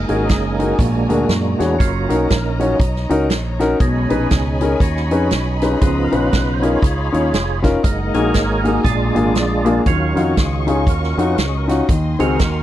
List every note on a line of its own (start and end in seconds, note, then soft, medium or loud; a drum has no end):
0.00 0.75 G#3 medium
0.00 0.75 A#3 soft
0.00 0.79 D#5 medium
0.00 1.79 G#5 medium
0.00 3.77 A#5 medium
0.08 0.29 G#1 medium
0.08 0.76 C#4 medium
0.08 0.24 D#4 medium
0.08 0.75 D#4 medium
0.08 0.24 F#4 medium
0.08 0.55 G#4 loud
0.08 0.24 G#4 medium
0.08 0.24 A#4 medium
0.08 closed hi-hat medium
0.29 0.72 F#1 medium
0.29 kick medium
0.29 snare loud
0.29 closed hi-hat medium
0.59 0.74 D#4 medium
0.59 0.74 F#4 medium
0.59 0.74 G#4 medium
0.59 0.75 A#4 medium
0.59 closed hi-hat medium
0.74 0.79 G#4 soft
0.78 1.05 A#1 medium
0.78 1.56 A#2 medium
0.78 1.75 G#3 medium
0.78 1.76 A#3 medium
0.78 1.76 D4 medium
0.78 1.76 F#4 medium
0.78 1.79 D5 medium
0.78 kick loud
0.78 closed hi-hat medium
1.09 1.26 D2 medium
1.09 1.24 D4 medium
1.09 1.24 F#4 medium
1.09 1.24 G#4 medium
1.09 1.24 A#4 medium
1.09 closed hi-hat medium
1.29 1.55 F#2 medium
1.29 snare loud
1.29 closed hi-hat medium
1.59 1.77 E2 medium
1.59 1.74 D4 medium
1.59 1.78 E4 medium
1.59 1.74 F#4 medium
1.59 1.74 G#4 medium
1.59 1.75 C#5 medium
1.59 snare soft
1.59 closed hi-hat medium
1.79 2.06 F#1 loud
1.79 2.16 F#3 medium
1.79 2.76 A#3 medium
1.79 2.29 C#4 medium
1.79 2.16 F4 medium
1.79 2.31 F#4 medium
1.79 5.78 C#5 medium
1.79 3.79 D#5 medium
1.79 kick loud
1.79 closed hi-hat loud
2.09 2.27 B1 medium
2.09 2.24 C#4 medium
2.09 2.24 D#4 medium
2.09 2.25 F#4 medium
2.09 2.25 A#4 medium
2.09 closed hi-hat medium
2.29 2.73 A#1 medium
2.29 2.59 C#4 medium
2.29 3.27 D#4 medium
2.29 2.76 A#4 medium
2.29 kick medium
2.29 snare loud
2.29 closed hi-hat medium
2.60 2.78 F#3 soft
2.60 2.75 C#4 medium
2.60 2.78 C#4 soft
2.60 2.75 D#4 medium
2.60 2.78 F4 soft
2.60 2.75 F#4 medium
2.60 2.75 C#5 medium
2.60 closed hi-hat medium
2.80 3.06 B1 medium
2.80 kick loud
2.80 closed hi-hat medium
2.96 snare soft
3.09 3.31 C#2 medium
3.09 3.25 C#4 medium
3.09 3.25 D#4 medium
3.09 3.25 F#4 medium
3.09 3.26 A#4 medium
3.09 closed hi-hat medium
3.30 3.73 A#1 medium
3.30 snare loud
3.30 closed hi-hat medium
3.60 3.75 C#4 medium
3.60 3.75 D#4 medium
3.60 3.75 F#4 medium
3.60 3.76 A#4 medium
3.60 snare soft
3.60 closed hi-hat medium
3.80 4.06 B1 medium
3.80 4.57 B2 medium
3.80 4.17 G#3 medium
3.80 4.10 C#4 medium
3.80 4.10 D#4 medium
3.80 7.79 D#5 medium
3.80 5.80 G#5 medium
3.80 7.80 B5 medium
3.80 kick loud
3.80 closed hi-hat medium
4.10 4.28 A#1 medium
4.10 4.25 C#4 medium
4.10 4.80 C#4 medium
4.10 4.25 D#4 medium
4.10 4.80 D#4 medium
4.10 4.26 G#4 medium
4.10 4.77 G#4 medium
4.10 4.26 B4 medium
4.10 closed hi-hat medium
4.31 4.74 C#2 medium
4.31 kick medium
4.31 snare loud
4.31 closed hi-hat medium
4.61 4.76 C#4 medium
4.61 4.76 D#4 medium
4.61 4.76 G#4 medium
4.61 4.77 A#4 medium
4.61 closed hi-hat medium
4.80 5.12 D#2 medium
4.80 5.78 C#4 medium
4.80 5.78 D#4 medium
4.80 5.58 F#4 medium
4.80 kick loud
4.80 closed hi-hat medium
4.96 snare soft
5.11 5.29 F2 medium
5.11 5.26 C#4 medium
5.11 5.26 D#4 medium
5.11 5.27 G#4 medium
5.11 5.27 B4 medium
5.11 closed hi-hat medium
5.31 5.74 B1 medium
5.31 snare loud
5.31 closed hi-hat medium
5.62 5.77 C#4 medium
5.62 5.77 D#4 medium
5.62 5.82 F4 medium
5.62 5.77 G#4 medium
5.62 5.77 B4 medium
5.62 snare soft
5.62 closed hi-hat medium
5.81 6.08 C#2 loud
5.81 6.59 C#3 medium
5.81 6.18 F3 medium
5.81 6.79 B3 medium
5.81 6.12 D#4 medium
5.81 6.11 F4 medium
5.81 6.05 G#4 loud
5.81 7.82 C#5 medium
5.81 7.81 F5 medium
5.81 kick loud
5.81 closed hi-hat medium
6.04 6.12 A#4 medium
6.12 6.29 A#1 medium
6.12 6.27 C#4 medium
6.12 6.27 D#4 medium
6.12 7.10 D#4 medium
6.12 6.61 F4 medium
6.12 6.27 F4 medium
6.12 6.55 B4 medium
6.12 6.27 B4 medium
6.12 closed hi-hat medium
6.33 6.76 B1 medium
6.33 kick loud
6.33 snare loud
6.33 closed hi-hat medium
6.53 6.62 C5 medium
6.62 6.77 C#4 medium
6.62 6.77 D#4 medium
6.62 7.59 F4 medium
6.62 6.78 F4 medium
6.62 7.60 G#4 medium
6.62 6.78 A#4 medium
6.62 7.59 C#5 loud
6.62 closed hi-hat medium
6.82 7.08 C#2 medium
6.82 kick loud
6.82 closed hi-hat medium
7.12 7.30 D#2 medium
7.12 7.28 C#4 medium
7.12 7.28 D#4 medium
7.12 7.28 F4 medium
7.12 7.28 C#5 medium
7.12 closed hi-hat medium
7.33 7.76 F1 medium
7.33 snare loud
7.33 closed hi-hat medium
7.62 7.78 C#4 medium
7.62 7.78 D#4 medium
7.62 7.78 F4 medium
7.62 7.79 A#4 medium
7.62 kick medium
7.62 snare soft
7.62 closed hi-hat medium
7.83 8.10 F#1 loud
7.83 8.80 G#3 soft
7.83 8.81 A#3 medium
7.83 8.81 D#4 medium
7.83 8.83 D#5 medium
7.83 8.83 F#5 medium
7.83 9.83 G#5 medium
7.83 9.84 A#5 medium
7.83 kick loud
7.83 closed hi-hat loud
8.14 8.31 A#1 medium
8.14 8.29 A#3 medium
8.14 8.29 D#4 medium
8.14 8.29 F#4 medium
8.14 8.81 G#4 medium
8.14 8.30 G#4 medium
8.14 8.81 A#4 medium
8.14 8.61 C#5 loud
8.14 closed hi-hat medium
8.34 8.77 G#1 medium
8.34 kick medium
8.34 snare loud
8.34 closed hi-hat medium
8.64 8.79 A#3 medium
8.64 8.79 D#4 medium
8.64 8.80 F#4 medium
8.64 8.80 G#4 medium
8.64 closed hi-hat medium
8.84 9.11 A#1 medium
8.84 9.62 A#2 medium
8.84 9.81 G#3 medium
8.84 9.82 D4 soft
8.84 9.82 F4 medium
8.84 9.82 G#4 medium
8.84 9.82 D5 loud
8.84 9.86 D5 medium
8.84 11.86 F5 medium
8.84 kick loud
8.84 closed hi-hat medium
9.15 9.36 G#1 medium
9.15 9.30 A#3 medium
9.15 9.30 D4 medium
9.15 9.30 F4 medium
9.15 9.30 G#4 medium
9.15 closed hi-hat medium
9.35 9.78 A#1 medium
9.35 snare loud
9.35 closed hi-hat medium
9.65 9.80 A#3 medium
9.65 9.81 D4 medium
9.65 9.81 F4 medium
9.65 9.81 G#4 medium
9.65 closed hi-hat medium
9.86 10.12 D#2 loud
9.86 10.63 D#3 medium
9.86 10.22 F#3 medium
9.86 10.38 C#4 medium
9.86 10.23 F4 medium
9.86 10.84 F#4 medium
9.86 10.39 A#4 medium
9.86 12.63 D#5 medium
9.86 11.87 C#6 medium
9.86 kick loud
9.86 closed hi-hat medium
10.15 10.33 F2 medium
10.15 10.31 C#4 medium
10.15 10.31 D#4 medium
10.15 10.31 F4 medium
10.15 10.31 F#4 medium
10.15 closed hi-hat medium
10.37 10.87 C#2 medium
10.37 10.87 C#4 soft
10.37 11.35 F4 soft
10.37 10.85 G#4 medium
10.37 kick medium
10.37 snare loud
10.37 closed hi-hat medium
10.67 10.82 C#4 medium
10.67 10.82 D#4 medium
10.67 10.82 F4 medium
10.67 10.82 G#4 medium
10.67 closed hi-hat medium
10.87 11.13 D#2 medium
10.87 11.85 C#4 medium
10.87 11.85 F#4 medium
10.87 11.26 A#4 medium
10.87 kick loud
10.87 closed hi-hat medium
11.03 snare soft
11.17 11.35 F2 medium
11.17 11.33 C#4 medium
11.17 11.33 D#4 medium
11.17 11.33 F4 medium
11.17 11.33 F#4 medium
11.17 closed hi-hat medium
11.30 11.37 B4 medium
11.36 11.81 C#2 medium
11.36 11.46 A#4 medium
11.36 snare loud
11.36 closed hi-hat medium
11.47 11.57 G#4 medium
11.57 11.68 A#4 medium
11.68 11.83 C#4 medium
11.68 11.83 D#4 medium
11.68 11.83 F4 medium
11.68 11.84 F#4 medium
11.68 snare soft
11.68 closed hi-hat medium
11.89 12.15 D#2 medium
11.89 12.63 D#3 medium
11.89 12.63 G#5 medium
11.89 12.63 C6 medium
11.89 kick loud
11.89 closed hi-hat medium
12.19 12.36 C#2 medium
12.19 12.34 C4 medium
12.19 12.34 D#4 medium
12.19 12.34 F#4 medium
12.19 12.63 F#4 medium
12.19 12.34 G#4 medium
12.19 12.63 A#4 medium
12.19 closed hi-hat medium
12.39 12.63 D#2 medium
12.39 kick medium
12.39 snare loud
12.39 closed hi-hat medium